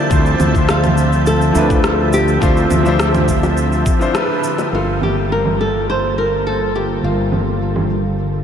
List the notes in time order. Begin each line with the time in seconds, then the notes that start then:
Already playing: D3 F3 C4 D4 E4 D5 E5 A5 G6
0.10 D2 F3 D4 E4 C5, kick, cabasa
0.26 cabasa
0.40 D2, low conga, cabasa
0.52 F3 D4 E5, kick, cabasa
0.58 C5
0.69 F4, cross-stick, cabasa
0.84 low conga, cabasa
0.97 cabasa
1.13 cabasa
1.26 A4, cabasa
1.41 cabasa
1.52 D2 F3 D4 E4, cabasa
1.58 B4
1.70 kick, cabasa
1.84 cross-stick, cabasa
2.13 G4, cabasa
2.28 cabasa
2.41 D2 F3 D4 F4 C5 E5, kick, cabasa
2.57 cabasa
2.71 D2, low conga, cabasa
2.83 F3 D4 E5, cabasa
2.88 C5
3.00 cross-stick, cabasa
3.15 low conga, cabasa
3.28 kick, cabasa
3.43 high bongo, cabasa
3.57 cabasa
3.72 cabasa
3.86 kick, cabasa
3.99 F3 D4 E4 C5, cabasa
4.13 F3 D4 E4 B4, cross-stick, cabasa
4.44 cabasa
4.58 high bongo, cabasa
4.70 G1 D3 G3 A#3 F4 A4, cabasa
4.75 F4 A4
4.88 cabasa
5.01 G4, low conga, cabasa
5.17 cabasa
5.30 A#4, cabasa
5.45 low conga, cabasa
5.59 A4, cabasa
5.74 cabasa
5.88 C5, cabasa
6.03 cabasa
6.17 A#4, cabasa
6.32 cabasa
6.45 A4, cabasa
6.74 G4, cabasa
6.89 cabasa
7.03 G1 F4, cabasa
7.18 cabasa
7.32 low conga, cabasa
7.47 cabasa
7.61 cabasa
7.76 low conga, cabasa
7.90 cabasa
8.05 cabasa
8.18 cabasa
8.34 cabasa